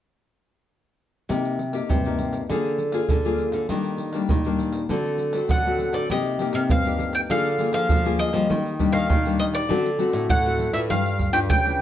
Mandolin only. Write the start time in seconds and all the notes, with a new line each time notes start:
5.51 F#5
5.94 D5
6.11 D#5
6.55 F5
6.71 F5
7.15 G5
7.31 F5
7.74 F5
8.19 D#5
8.93 F5
9.39 D#5
9.55 D5
10.30 F#5
10.74 E5
10.90 F5
11.33 G5
11.50 G5